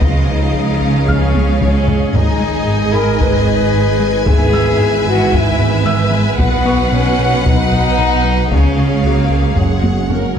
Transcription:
Already playing: B4 D#5 B5
0.01 C#2 C#3 F3 G#3 F4 G#4 C#5 F5, taiko
0.27 C#3 D#4
0.54 C#2
0.81 C#2
1.08 C#2 C#4 C#5 F6, taiko
1.35 C#2, taiko high
1.61 C#2 C#4, taiko mid
1.88 C#3, taiko low
2.14 G#1 G#2 D#3 D#4 B4 D#5 G#5, taiko
2.40 G#3
2.67 G#2
2.93 G#2 A#4 B5
3.19 G#2 B4, taiko
3.47 G#2
3.73 G#2
4.00 G#3
4.26 G#2 E3 B3 G#4 B4 E5, taiko
4.53 G#3 E6
4.79 G#2
5.06 G#2 F#4
5.32 G#2 E4, taiko
5.59 G#2
5.85 G#2 E5 E6
6.11 G#3
6.38 B1 B2 F#3 B3 F#4 F#5, taiko
6.66 B3 C#6
6.92 B2 C#4
7.19 B2
7.46 B2 D#4, taiko
7.72 B2
7.97 B2 A#5
8.25 B3
8.51 C#2 C#3 G#3 C#4 G#4 C#5 F5, taiko
8.78 C#3
9.04 C#2 A#3 F#4
9.30 C#2
9.56 F#1 F#2 F#3 G#3 F#4 F#5, taiko
9.83 F#2, taiko high
10.09 F#2 A#4, taiko high

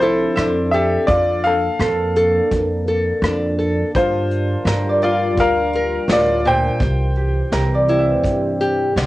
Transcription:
Already playing: C2 C3 F3 C4 D4 G4 A4
0.00 E4 A4 C5, closed hi-hat
0.35 F2 C4 D4 E5, cross-stick, closed hi-hat
0.71 G4 A4 E5, closed hi-hat
1.07 F2 F3 A#3 D4 F4 D5, kick, closed hi-hat
1.44 A4 F5, closed hi-hat
1.79 F2 A#3 A4, cross-stick, closed hi-hat
2.16 A4, closed hi-hat
2.52 F2 F3, kick, closed hi-hat
2.87 A4, closed hi-hat
3.22 F2 A#3 D4, cross-stick, closed hi-hat
3.59 A4, closed hi-hat
3.95 G2 G3 F4 A#4 C5, kick, closed hi-hat
4.31 closed hi-hat
4.65 G2 G3 A#4, snare, closed hi-hat
4.89 D5
5.02 F4 D5, closed hi-hat
5.12 F5
5.37 D2 D3 A#4 F5, kick, closed hi-hat
5.73 A#4, closed hi-hat
6.08 D2 A2 F4 C5, snare, closed hi-hat
6.13 D5
6.45 A#2 C5 G5, closed hi-hat
6.80 C2 C3 E3 C4 G4, kick, closed hi-hat
7.15 G4, closed hi-hat
7.52 C2 G3 A#4, snare, closed hi-hat
7.74 D5
7.88 E4, closed hi-hat
7.99 E5
8.23 G2, kick, closed hi-hat
8.60 G4, closed hi-hat
8.96 C2 D3, snare, closed hi-hat

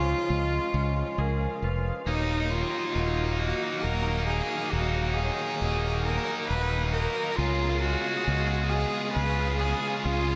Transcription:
Already playing: C#2 C#3 F3 G#3 C#4 F4 G#4 C#5 F5
0.30 C#2 F4 D#5
0.74 C#2 C#4
1.18 C#2 G#4 A#4
1.62 F1 F4 B4
2.06 D#1 D#2 A#2 D#3 F#3 A#3 D#4 C#5 F5
2.15 A#3 D#4
2.22 A#3 D#4
2.31 A#3 D#4
2.37 A#3 D#4
2.45 A#3 D#4
2.51 D#3 A#3 F4
2.55 D#4
2.62 A#3 D#4
2.69 A#3 D#4
2.78 A#3 D#4
2.85 A#3 D#4
2.92 D#1 F#3 A#3 D#4
2.97 D#5
3.01 A#3 D#4
3.08 A#3 D#4
3.15 A#3 D#4
3.24 A#3 D#4
3.32 A#3 D#4
3.39 A#3 D#4 F#4 D#5
3.47 A#3 D#4
3.55 A#3 D#4
3.63 A#3 D#4
3.69 A#3 D#4
3.79 A#3 D#4
3.83 D#1 F#3 A#3 D#4 A#4 F5
3.93 A#3 D#4
4.02 A#3 D#4
4.08 A#3 D#4
4.17 A#3 D#4
4.25 A#3 D#4 G#4
4.29 A#3 D#4
4.34 D#4
4.41 A#3 D#4
4.48 A#3 D#4
4.56 A#3 D#4
4.64 A#3 D#4
4.71 D#1 D#2 A#3 D#4 F#4 F5
4.80 A#3 D#4
4.88 A#3 D#4
4.95 A#3 D#4
5.03 A#3 D#4
5.10 A#3 D#4 G#4
5.17 D#3 A#3 D#4 C#5
5.26 A#3 D#4
5.32 A#3 D#4
5.42 A#3 D#4
5.49 A#3 D#4
5.56 A#3 D#4
5.62 D#1 F#3 A#3 D#4 D#5
5.72 A#3 D#4
5.78 A#3 D#4
5.87 A#3 D#4
5.93 A#3 D#4
6.03 A#3 D#4 A#4
6.10 A#3 D#4
6.17 A#3 D#4
6.25 A#3 D#4
6.32 A#3 D#4
6.39 A#3 D#4
6.47 D#1 A#3 D#4 B4 A#5
6.52 F#3
6.56 A#3 D#4
6.63 A#3 D#4
6.70 A#3 D#4
6.78 A#3 D#4
6.85 A#3 D#4
6.92 A#3 D#4 A#4
7.01 A#3 D#4
7.08 A#3 D#4
7.16 A#3 D#4
7.24 A#3 D#4
7.32 A#3 D#4
7.36 C#2 C#3 G#3 B3 F4 G#4 C#5 F5
7.40 C#3
7.46 F4 G#4
7.53 F4 G#4
7.61 F4 G#4
7.69 F4 G#4
7.77 F4 F#4 G#4
7.84 G#3 F4 G#4
7.93 F4 G#4
8.02 F4 G#4
8.08 F4 G#4
8.16 F4 G#4
8.25 C#2 F4 G#4 D#5
8.29 C#4 F4 G#4
8.40 F4 G#4
8.47 F4 G#4
8.55 F4 G#4
8.62 F4 G#4
8.69 F4 G#4 D#5
8.79 F4 G#4
8.87 F4 G#4
8.95 F4 G#4
9.02 F4 G#4
9.10 F4 G#4
9.14 C#2 C#4 F4 B4 F5
9.18 G#4
9.26 F4 G#4
9.33 F4 G#4
9.41 F4 G#4
9.48 F4 G#4
9.57 F4 G#4
9.65 F4 G#4
9.72 F4 G#4
9.80 F4 G#4
9.89 F4 G#4
9.96 F4 G#4
10.04 C#2 C#3 C#4 F4 G#4 F5
10.12 F4 G#4
10.20 F4 G#4
10.28 F4 G#4

